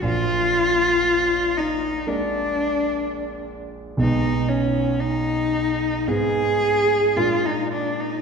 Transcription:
X:1
M:4/4
L:1/16
Q:1/4=59
K:Bbphr
V:1 name="Cello"
F6 E2 =D6 z2 | ^D2 _D2 ^D4 A4 F E =D E |]
V:2 name="Grand piano" clef=bass
[B,,,B,,]8 [A,B,=D]8 | [=B,,,=B,,^G,=B,^D]8 [A,,A,CE]4 [_B,,A,_B,=D]4 |]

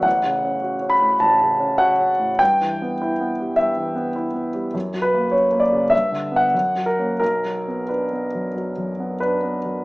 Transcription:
X:1
M:4/4
L:1/16
Q:1/4=101
K:Bm
V:1 name="Grand piano"
f6 b2 a4 f4 | g8 e8 | z2 B2 c2 d2 e3 f3 ^A2 | ^A4 B8 B4 |]
V:2 name="Grand piano" clef=bass
(3A,,,2 C,2 C2 (3F2 C2 A,,2 (3A,,,2 C,2 C2 (3F2 C2 A,,2 | (3G,,2 E,2 B,2 (3E2 B,2 G,2 (3G,,2 E,2 B,2 (3E2 B,2 G,2 | (3F,,2 F,2 ^A,2 (3C2 A,2 C,2 (3G,,2 D,2 B,2 (3F,,2 F,2 [A,C]2 | (3B,,,2 F,2 B,2 (3D2 B,2 F,,2 (3F,2 F,,2 B,2 (3D2 B,2 F,,2 |]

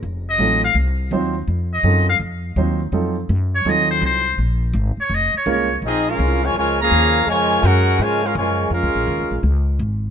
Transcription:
X:1
M:4/4
L:1/16
Q:"Swing" 1/4=166
K:Bbm
V:1 name="Muted trumpet"
z2 e4 f2 z8 | z2 e4 f2 z8 | z6 d2 e2 c2 c4 | z6 d2 e2 d2 d3 z |
z16 | z16 | z16 |]
V:2 name="Trumpet section"
z16 | z16 | z16 | z16 |
[CFAe]2 [DABf]4 [FBda]2 [FBda]2 [Adfb]6 | [FBda]4 [DABg]4 [FBda]2 [DABf]2 [FBda]4 | [DABf]8 z8 |]
V:3 name="Grand piano"
z4 [G,CEF=A]2 z6 [G,CEFc]2 z2 | z4 [G,CEF=A]2 z6 [G,CEFc]2 z2 | [G,CEF=A]2 z6 [G,CEFA]6 z2 | z12 [A,B,DFB]2 z2 |
z16 | z16 | z16 |]
V:4 name="Trombone section" clef=bass
z16 | z16 | z16 | z16 |
E2 [A,DF]4 [D,F,A,]2 [D,F,A,]2 [D,F,B,]6 | [D,F,A,]4 [A,DG]4 [D,F,A,]2 [A,DF]2 [D,F,A,]4 | [A,DF]8 z8 |]
V:5 name="Upright bass" clef=bass
F,,,4 =A,,,4 C,,4 E,,4 | F,,4 G,,4 F,,4 E,,4 | F,,4 G,,4 E,,4 C,,4 | B,,,4 A,,,2 z2 F,,,2 z2 C,,4 |
B,,,4 C,,4 D,,4 E,,4 | F,,4 G,,4 A,,4 G,,4 | (3F,,2 D,,2 B,,,2 (3E,,2 D,,2 B,,,2 D,,4 A,,,4 |]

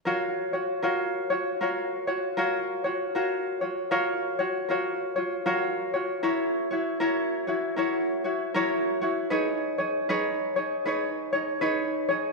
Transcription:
X:1
M:4/4
L:1/8
Q:"Swing" 1/4=78
K:F#
V:1 name="Ukulele"
[EFAc] [EFc] [EFAc] [EFc] [EFAc] [EFc] [EFAc] [EFc] | [EFAc] [EFc] [EFAc] [EFc] [EFAc] [EFc] [EFAc] [EFc] | [=EFAc] [EFc] [EFAc] [EFc] [EFAc] [EFc] [EFAc] [EFc] | [DGBc] [DGc] [DGBc] [DGc] [DGBc] [DGc] [DGBc] [DGc] |]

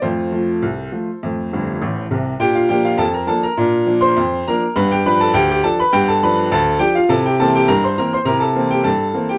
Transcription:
X:1
M:2/4
L:1/16
Q:1/4=102
K:Bb
V:1 name="Upright piano"
[FAc]8- | [FAc]6 z2 | [Gg] [Ff] [Gg] [Ff] [Aa] [Bb] [Aa] [Bb]- | [Bb]3 [cc']3 [Bb]2 |
[=B=b] [Gg] [Bb] [Aa] [Gg] [Gg] [Aa] [Bb] | [Gg] [Aa] [=B=b]2 [Aa]2 [Gg] [Ff] | [Aa] [Gg] [Aa] [Gg] [Bb] [cc'] [Bb] [cc'] | [Bb] [Aa]2 [Gg] [Aa]3 [Gg] |]
V:2 name="Upright piano" clef=bass
[F,,A,]2 [F,A,F]2 C,,2 [F,A,F]2 | [F,,A,]2 [G,,,G,,]2 [A,,,A,,]2 [C,,C,]2 | [B,,D]2 [F,B,D]2 F,,2 [F,B,D]2 | [B,,D]2 [F,B,D]2 F,,2 [F,B,D]2 |
[G,,=B,]2 [F,D]2 D,,2 [F,D]2 | [G,,=B,]2 [F,D]2 D,,2 [F,D]2 | [C,=E]2 [=E,B,C]2 G,,2 [E,B,C]2 | [C,=E]2 [=E,B,C]2 G,,2 [E,B,C]2 |]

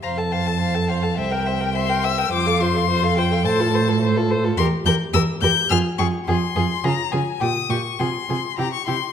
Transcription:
X:1
M:2/4
L:1/16
Q:1/4=105
K:F
V:1 name="Violin"
b2 a4 f2 | g4 c'2 e'2 | d'2 c'4 g2 | a4 z4 |
[K:Fm] c'2 g'2 =e'2 g'2 | f'2 d'2 c'4 | b2 a2 e'2 d'2 | c'4 b d' c'2 |]
V:2 name="Violin"
f a f a f a f a | e g e g e g e g | c f c f c f c f | c A c A c A c A |
[K:Fm] B2 B2 B2 B2 | A2 A2 A2 A2 | A2 A2 G2 G2 | A2 A2 G2 G2 |]
V:3 name="Viola"
c A c A c A c A | c B c B c B c B | F A F A F A F A | A F A F A F A F |
[K:Fm] G2 G2 G2 G2 | F2 F2 F2 F2 | F2 F2 F2 F2 | F2 F2 =E2 E2 |]
V:4 name="Cello" clef=bass
F,,8 | C,,8 | F,,8 | A,,8 |
[K:Fm] =E,,2 E,,2 E,,2 E,,2 | F,,2 F,,2 F,,2 F,,2 | D,2 D,2 B,,2 B,,2 | C,2 C,2 C,2 C,2 |]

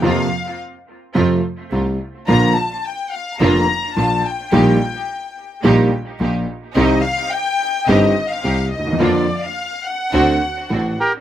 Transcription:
X:1
M:4/4
L:1/16
Q:1/4=107
K:Bb
V:1 name="Violin section"
f4 z12 | b2 a2 g2 f2 b4 a2 g2- | g8- g2 z6 | e2 f2 g4 e3 f3 e2 |
d3 f3 _g8 z2 |]
V:2 name="Bandoneon"
z16 | z16 | z16 | z16 |
z12 z2 [GB]2 |]
V:3 name="String section"
[B,CF]2 z6 [A,CF]2 z2 [A,CF]2 z2 | [B,DF]2 z6 [B,DF]2 z2 [B,DF]2 z2 | [B,EG]2 z6 [B,EG]2 z2 [B,EG]2 z2 | [CEG]2 z6 [CEG]2 z2 [CEG]2 z2 |
[B,DF]2 z6 [CD^F]2 z2 [CDF]2 z2 |]
V:4 name="Grand piano" clef=bass
[F,,C,F,B,F]2 z6 [F,,C,F,A,F]2 z2 [C,,C,]2 z2 | [B,,,B,,D,F,B,F]2 z6 [F,,,F,,D,F,B,F]2 z2 [B,,,B,,]2 z2 | [B,,,B,,E,G,B,G]2 z6 [B,,,B,,E,G,B,G]2 z2 [B,,,B,,]2 z2 | [C,,C,E,G,CG]2 z6 [G,,,G,,E,G,CG]2 z2 [C,,C,]2 z/2 D,,/2 E,,/2 =E,,/2 |
[F,,D,F,B,F]2 z6 [D,,D,A,C^F]2 z2 [A,,,A,,]2 z2 |]
V:5 name="Double bass" clef=bass
F,,2 z6 F,,2 z2 C,,2 z2 | B,,,2 z6 F,,,2 z2 B,,,2 z2 | B,,,2 z6 B,,,2 z2 B,,,2 z2 | C,,2 z6 G,,,2 z2 C,,2 E,,2 |
F,,2 z6 D,,2 z2 A,,,2 z2 |]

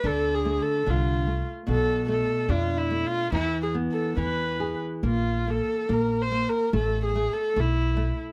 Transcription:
X:1
M:2/4
L:1/16
Q:1/4=72
K:Am
V:1 name="Viola"
(3A2 ^G2 A2 F3 z | A2 A2 (3F2 E2 F2 | (3E2 ^G2 A2 B3 z | F2 A2 (3_B2 c2 B2 |
(3A2 ^G2 A2 E3 z |]
V:2 name="Nylon-string guitar"
D,2 A,2 D,2 A,2 | B,,2 A,2 D2 A,2 | E,2 B,2 E,2 ^G2 | _B,2 B,2 B,2 B,2 |
A,2 A,2 A,2 A,2 |]
V:3 name="Upright bass" clef=bass
D,,4 C,,4 | B,,,4 F,,4 | E,,4 E,,4 | _B,,,4 B,,,4 |
A,,,4 B,,,4 |]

